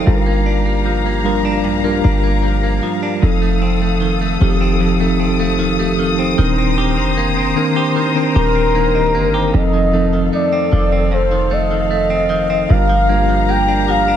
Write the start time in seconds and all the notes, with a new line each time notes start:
Already playing: D#3 A3 C4 D#4 C5 F5
0.06 G1 G2 G3 D4 F4 G4 A4 A#5
0.14 A#4
0.26 A#3
0.46 D4
0.66 A#3
0.86 F3
1.06 A#3
1.24 F3 G3 D4 F4 A#4
1.45 D4
1.64 A#1 G2
1.83 G3 A#3 D4 F4 A#4
2.04 G1 D4
2.24 A#3
2.43 F3
2.64 A#3
2.83 F3
3.03 D4
3.22 F1 F2 F3 C4 D#4 A4 D#6
3.42 A3
3.62 C4
3.82 A3
4.01 D#3
4.21 A3
4.40 F1 D#3 F3 C4 D#4 G4
4.61 C4
4.81 F2
5.00 F3 A3 C4 D#4 A4
5.20 C4
5.40 A3
5.59 D#3
5.79 A3 G4
5.99 D#3 C4 A4
6.19 C4 D#4 C5
6.38 D#1 D3 D#3 C4 D4 A#4 C5 A#5
6.44 D#3
6.58 C4
6.78 G4
6.98 F1 C4
7.17 A#3
7.37 C4
7.56 D#3 A#3 C4 D4 A#4
7.76 G4
7.96 D#3
8.15 D#3 C4 D4 A#4
8.36 D#1 G4 A#4
8.55 C4
8.75 A#3 D#4
8.95 C4 G4 D#5
9.15 G1 A#3
9.34 D#4 G4 C5
9.53 F1 F2 F3 C4 D#4 A4 D#5 F5
9.74 D#3
9.93 F3 A3 C4 D#4 A4
10.13 D#3
10.33 A3 D5
10.53 C4
10.72 F1 D#3
10.92 C4
11.12 F2 C5
11.31 D#3
11.51 A3 D#5
11.71 D#3
11.91 A3
12.10 C4
12.30 D#3
12.50 C4
12.69 G1 G2 G3 D4 F4 G4 A#4 F5 A#5
12.89 F3
13.09 G3 A#3 D4 F4 A#4
13.29 F3
13.49 A#3 G5
13.68 D4
13.88 F3 F5
14.08 D4